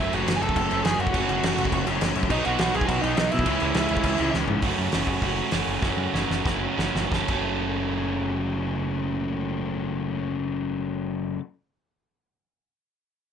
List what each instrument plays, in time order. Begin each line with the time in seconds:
Already playing: distorted electric guitar F#2 C#3 F#3, lead electric guitar E4
0.00 distorted electric guitar A3 C#4, lead electric guitar E5
0.13 picked electric bass F#1, lead electric guitar F#4 F#5, crash
0.26 picked electric bass F#1, snare, crash
0.36 lead electric guitar G#5
0.40 picked electric bass F#1, lead electric guitar A4 A5, crash
0.49 kick
0.56 picked electric bass F#1, kick, crash
0.70 picked electric bass F#1, distorted electric guitar F#2 C#3 F#3 A3 C#4, crash
0.84 picked electric bass F#1, distorted electric guitar F#2 C#3 F#3 A3 C#4, lead electric guitar G#4 G#5, snare, crash
0.99 picked electric bass F#2, lead electric guitar F#4 F#5, crash
1.07 kick
1.14 picked electric bass F#1, distorted electric guitar F#2 C#3 F#3 A3 C#4, kick, crash
1.29 picked electric bass F#1, crash
1.43 picked electric bass F#1, snare, crash
1.57 picked electric bass F#1, crash
1.65 kick
1.72 picked electric bass F#1, kick, crash
1.85 picked electric bass F#1, distorted electric guitar F#2 C#3 F#3 A3 C#4, crash
2.01 picked electric bass F#1, distorted electric guitar F#2 C#3 F#3 A3 C#4, snare, crash
2.15 picked electric bass F#2, crash
2.23 kick
2.30 picked electric bass B1, distorted electric guitar B2 F#3 B3 D#4, lead electric guitar D#4 D#5, kick, crash
2.44 picked electric bass B1, lead electric guitar F#4 F#5, crash
2.59 picked electric bass B1, lead electric guitar F#4 F#5, snare, crash
2.74 picked electric bass B1, lead electric guitar G#4 G#5, crash
2.81 kick
2.87 picked electric bass B1, lead electric guitar F#4 F#5, kick, crash
3.01 picked electric bass B1, distorted electric guitar B3 D#4, lead electric guitar D#4 D#5, crash
3.05 distorted electric guitar B2 F#3
3.17 picked electric bass B1, distorted electric guitar B2 F#3 B3 D#4, lead electric guitar D#4 D#5, snare, crash
3.31 picked electric bass B2, lead electric guitar E4 E5, crash
3.39 kick
3.46 picked electric bass C#2, distorted electric guitar C#3 E3 G#3 C#4, kick, crash
3.60 picked electric bass C#2, crash
3.74 picked electric bass C#2, snare, crash
3.89 picked electric bass C#2, crash
3.97 kick
4.03 picked electric bass C#2, kick, crash
4.18 picked electric bass C#2, distorted electric guitar E3 G#3 C#4, crash
4.22 distorted electric guitar C#3
4.34 picked electric bass C#2, distorted electric guitar C#3 E3 G#3 C#4, snare
4.48 picked electric bass G#2, floor tom
4.62 picked electric bass F#1, distorted electric guitar F#2 C#3 F#3 A3 C#4, overdriven electric guitar F#4, kick, open hi-hat
4.78 picked electric bass F#2
4.92 picked electric bass F#1, distorted electric guitar F#2 C#3 F#3 A3 C#4, overdriven electric guitar F#4, snare, open hi-hat
5.07 picked electric bass F#1, kick
5.20 picked electric bass F#1, distorted electric guitar F#2 C#3 F#3 A3 C#4, kick, open hi-hat
5.25 overdriven electric guitar F#4
5.51 picked electric bass F#1, distorted electric guitar F#2 C#3 F#3 A3 C#4, overdriven electric guitar F#4, snare, open hi-hat
5.67 picked electric bass F#1
5.82 picked electric bass F#1, distorted electric guitar F#2 C#3 F#3 A3 C#4, overdriven electric guitar F#4, kick, snare
5.97 picked electric bass F#2
6.13 picked electric bass F#1, distorted electric guitar F#2 C#3 F#3 A3 C#4, overdriven electric guitar F#4, snare
6.30 picked electric bass F#1, snare
6.44 picked electric bass F#1, distorted electric guitar F#2 C#3 F#3 A3 C#4, overdriven electric guitar F#4, kick, snare
6.77 picked electric bass F#1, distorted electric guitar F#2 C#3 F#3 A3 C#4, overdriven electric guitar F#4, snare
6.94 picked electric bass F#1, snare
7.10 picked electric bass F#1, distorted electric guitar F#2 C#3 F#3 A3, kick, snare
7.14 distorted electric guitar C#4, overdriven electric guitar A4
7.28 picked electric bass F#1, distorted electric guitar F#2 C#3 F#3, overdriven electric guitar A4, kick, crash
7.32 distorted electric guitar A3 C#4